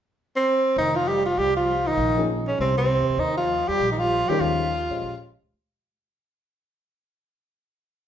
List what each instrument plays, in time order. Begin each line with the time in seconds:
0.36 tenor saxophone C4
0.76 upright bass F1, trombone D#3, tenor saxophone D#4
0.96 trombone F3, tenor saxophone F4
1.08 trombone G3, tenor saxophone G4
1.26 trombone F3, tenor saxophone F4
1.37 upright bass C2, trombone G3, tenor saxophone G4
1.57 trombone F3, tenor saxophone F4
1.87 trombone D#3, tenor saxophone D#4
1.97 upright bass A#1
2.17 upright piano F3 A#3 C#4 D#4 G#4
2.48 trombone C#3, tenor saxophone C#4
2.59 upright bass C2, trombone C3, tenor saxophone C4
2.77 trombone C3, tenor saxophone C4
2.99 upright bass D#2
3.09 upright bass E2
3.17 upright bass D#2, trombone D#3, tenor saxophone D#4
3.38 trombone F3, tenor saxophone F4
3.68 upright bass E2, trombone G3, tenor saxophone G4
3.80 upright bass A#1
3.91 trombone D#3, tenor saxophone D#4
3.98 trombone F3, tenor saxophone F4
4.28 upright piano D#3 G#3 C#4 G4 A#4, trombone G3, tenor saxophone G4, muted upright bass stroke
4.40 upright bass D#2, trombone F3, tenor saxophone F4
4.90 upright bass A#2, upright piano G#3 C#4 G4 C5 D#5
5.02 upright bass A#1
5.52 upright bass D2